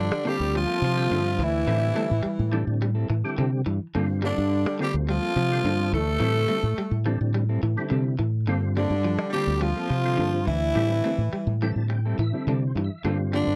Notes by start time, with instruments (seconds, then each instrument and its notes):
Already playing: fingered electric bass G2, baritone saxophone D3, trombone D3, clean electric guitar F3, tenor saxophone D4
0.12 fingered electric bass G3
0.25 clean electric guitar D3 A#3 C4 F4 A4, tonewheel organ D3 G3 C4 F4, baritone saxophone G3, tenor saxophone G4
0.29 trombone G3
0.40 fingered electric bass D2, muted clean electric guitar stroke
0.53 baritone saxophone F3, trombone F3, clean electric guitar G3, tenor saxophone F4, muted clean electric guitar stroke
0.67 clean electric guitar A#3 C4 F4 A4
0.81 fingered electric bass C3, clean electric guitar F3, muted clean electric guitar stroke
0.95 tonewheel organ D3 G3 C4 E5, clean electric guitar F4 A4, muted clean electric guitar stroke
1.09 fingered electric bass G2, clean electric guitar D3 A#3 C4 F4 A4
1.25 muted clean electric guitar stroke
1.38 fingered electric bass D2, clean electric guitar E3, muted clean electric guitar stroke
1.42 baritone saxophone E3, trombone E3, tenor saxophone E4
1.67 fingered electric bass A2, tonewheel organ D3 G3 C4 E4, clean electric guitar E3 G3 C4 E4 A4
1.80 muted clean electric guitar stroke
1.94 clean electric guitar G3 A3 C4 E4 A4
2.10 fingered electric bass A2, muted clean electric guitar stroke
2.23 clean electric guitar G3, muted fingered electric bass stroke
2.38 fingered electric bass A2, muted clean electric guitar stroke
2.51 tonewheel organ D3 G3 C4 D4, clean electric guitar E3 G3 C4 E4 A4
2.67 fingered electric bass A2, muted clean electric guitar stroke
2.81 clean electric guitar G3, muted clean electric guitar stroke
2.95 clean electric guitar G3 C4 E4 A4
3.10 fingered electric bass A2, clean electric guitar E3, muted clean electric guitar stroke
3.24 tonewheel organ D3 G3 C4 G4, clean electric guitar C4 E4 A4
3.38 fingered electric bass C3, clean electric guitar D3 G3 C4 E4 A4
3.66 fingered electric bass G2, clean electric guitar E3, muted clean electric guitar stroke
3.95 fingered electric bass G2, clean electric guitar D3 A#3 C4 F4 A4, tonewheel organ D3 G3 C4 F4
4.10 muted clean electric guitar stroke
4.22 trombone D3, baritone saxophone D3, clean electric guitar G3 A#3 C4 F4 A4, tenor saxophone D4
4.38 fingered electric bass G2
4.66 fingered electric bass G3
4.79 clean electric guitar D3 A#3 C4 F4 A4, tonewheel organ D3 G3 C4 F4, baritone saxophone G3, trombone G3, tenor saxophone G4
4.94 fingered electric bass D2
5.07 baritone saxophone F3, clean electric guitar G3, tenor saxophone F4, muted clean electric guitar stroke
5.12 trombone F3
5.21 clean electric guitar A#3 C4 F4 A4
5.35 fingered electric bass C3, clean electric guitar F3, muted clean electric guitar stroke
5.49 tonewheel organ D3 G3 C4 F4, clean electric guitar C4 F4 A4
5.64 fingered electric bass G2, clean electric guitar D3 A#3 C4 F4 A4
5.77 muted clean electric guitar stroke
5.91 fingered electric bass D2, clean electric guitar E3, baritone saxophone A3, tenor saxophone A4, muted clean electric guitar stroke
5.96 trombone A3
6.20 fingered electric bass A2, tonewheel organ D3 G3 C4 E4, clean electric guitar E3 G3 C4 E4 A4
6.34 muted clean electric guitar stroke
6.48 clean electric guitar G3 A3 C4 E4 A4
6.63 fingered electric bass A2, muted clean electric guitar stroke
6.78 clean electric guitar G3, muted fingered electric bass stroke
6.91 fingered electric bass A2, muted clean electric guitar stroke
7.05 tonewheel organ D3 G3 C4 D4, clean electric guitar E3 G3 C4 E4 A4
7.21 fingered electric bass A2, muted clean electric guitar stroke
7.34 clean electric guitar G3, muted clean electric guitar stroke
7.49 clean electric guitar G3 C4 E4 A4
7.63 fingered electric bass A2, clean electric guitar E3
7.76 tonewheel organ D3 G3 C4 E4, clean electric guitar C4 E4 A4
7.90 fingered electric bass C3, clean electric guitar D3 G3 C4 E4 A4
8.19 fingered electric bass A2, clean electric guitar E3, muted clean electric guitar stroke
8.47 fingered electric bass G2, clean electric guitar D3 A#3 C4 F4 A4, tonewheel organ D3 G3 C4 F4
8.63 muted clean electric guitar stroke
8.75 baritone saxophone D3, trombone D3, clean electric guitar G3 A#3 C4 F4 A4, tenor saxophone D4
8.90 fingered electric bass G2
9.04 clean electric guitar F3
9.18 fingered electric bass G3, muted clean electric guitar stroke
9.30 baritone saxophone G3, trombone G3, clean electric guitar A#3 C4, tenor saxophone G4
9.34 tonewheel organ D3 G3 C4 F4, clean electric guitar D3 F4 A4
9.47 fingered electric bass D2, muted clean electric guitar stroke
9.57 baritone saxophone F3, trombone F3, clean electric guitar G3
9.62 tenor saxophone F4, muted clean electric guitar stroke
9.76 clean electric guitar A#3 C4 F4 A4
9.90 fingered electric bass C3, clean electric guitar F3
10.04 tonewheel organ D3 G3 C4 F4, clean electric guitar C4 F4 A4
10.17 fingered electric bass G2, clean electric guitar D3 A#3 C4 F4 A4
10.33 muted clean electric guitar stroke
10.45 fingered electric bass D2, baritone saxophone E3, trombone E3, clean electric guitar E3, tenor saxophone E4, muted clean electric guitar stroke
10.75 fingered electric bass A2, tonewheel organ D3 G3 C4 E4, clean electric guitar E3 G3 C4 E4 A4
10.92 muted clean electric guitar stroke
11.04 clean electric guitar G3 A3 C4 E4 A4
11.18 fingered electric bass A2, muted clean electric guitar stroke
11.33 clean electric guitar G3, muted fingered electric bass stroke
11.47 fingered electric bass A2, muted clean electric guitar stroke
11.62 tonewheel organ D3 G3 C4 E4 G5, clean electric guitar E3 G3 C4 E4 A4
11.72 tonewheel organ A5
11.76 fingered electric bass A2, muted clean electric guitar stroke
11.89 tonewheel organ G5, muted clean electric guitar stroke
12.05 clean electric guitar G3 C4 E4 A4
12.18 fingered electric bass A2, clean electric guitar E3, tonewheel organ E5
12.32 tonewheel organ D3 G3 C4 E4, clean electric guitar C4 E4 A4
12.47 fingered electric bass C3, clean electric guitar D3 G3 C4 E4 A4, tonewheel organ D5
12.63 muted clean electric guitar stroke
12.67 tonewheel organ C5
12.75 fingered electric bass G2, clean electric guitar E3, muted clean electric guitar stroke
12.84 tonewheel organ E5
13.04 fingered electric bass G2, clean electric guitar D3 A#3 C4 F4 A4, tonewheel organ D3 G3 C4 F4
13.20 muted clean electric guitar stroke
13.33 baritone saxophone D3, trombone D3, clean electric guitar G3 A#3 F4 A4, tenor saxophone D4, muted clean electric guitar stroke
13.47 fingered electric bass G2, muted clean electric guitar stroke